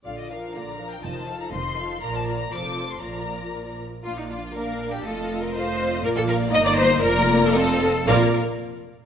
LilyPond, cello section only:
\new Staff \with { instrumentName = "Cello section" } { \time 2/4 \key bes \major \tempo 4 = 120 bes,4 bes,4 | f,4 f,4 | bes,4 f,4 | bes,4. r8 |
f'16 ees'16 f'8 bes'8. g'16 | a'8. bes'16 c''4 | bes'16 a'16 bes'8 ees''16 d''16 c''8 | bes'8. bes'16 a'4 |
bes'8 r4. | }